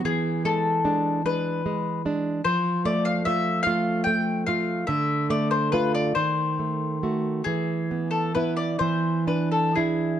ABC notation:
X:1
M:6/8
L:1/16
Q:3/8=48
K:Ephr
V:1 name="Mandolin"
^G2 A4 B4 z2 | c2 d f e2 f2 g2 f2 | e2 d c B d ^B6 | ^G3 A B d c2 B A G2 |]
V:2 name="Nylon-string guitar"
E,2 ^G,2 [G,D]2 [G,D]2 G,2 [G,D]2 | F,2 A,2 [A,F]2 [A,F]2 A,2 [A,F]2 | D,2 A,2 [A,F]2 ^D,2 A,2 [A,^F]2 | E,2 B,2 [B,E]2 E,2 D2 [DE]2 |]